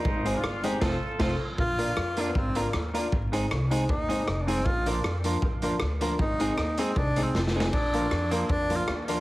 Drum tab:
CC |------------x-----x-----|------------------------|------------------------|------------------------|
HH |---x-----x--------------|---x-----x-----x-----x--|---x-----x-----x-----x--|---x-----x-----x-----x--|
SD |------r-----o-----o-----|------r-----------r-----|------r-----------r-----|------r-----------r-----|
BD |o-----------o-----o-----|o-----------o-----------|o-----------o-----------|o-----------o-----------|

CC |------------------------|x-----------------------|
HH |---x-----x-----x--------|---x-----x-----x-----x--|
SD |------r-----------o-o-o-|------r-----------r-----|
BD |o-----------o-----------|o-----------o-----------|